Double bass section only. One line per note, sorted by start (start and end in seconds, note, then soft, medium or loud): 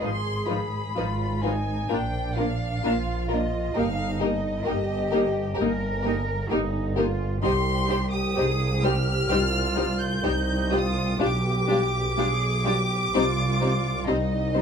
0.04 0.86 G#1 medium
0.97 1.80 G#1 medium
1.91 2.74 A#1 medium
2.85 3.66 A#1 medium
3.76 4.56 G1 medium
4.67 5.49 G1 medium
5.58 6.41 G1 medium
6.52 7.33 G1 medium
7.44 8.27 C2 medium
8.38 9.21 C2 medium
9.31 10.13 C2 medium
10.25 11.10 C2 medium
11.20 12.06 B1 medium
12.18 13.04 B1 medium
13.15 13.99 C2 medium
14.11 14.62 C2 medium